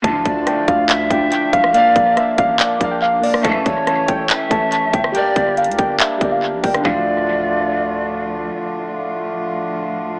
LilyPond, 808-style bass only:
\new Staff \with { instrumentName = "808-style bass" } { \clef bass \time 4/4 \key d \minor \tempo 4 = 141 d,8 d,8 r8 d,4 d,8 r8 bes,,8 | r8 bes,,8 r8 a,,8 r8 bes,,4 r8 | a,,8 a,,4 a,,8 r8 a,,8. bes,,16 g,,8 | r8 g,,8. d,16 g,,8 r8 g,,8. bes,,16 g,,8 |
d,1 | r1 | }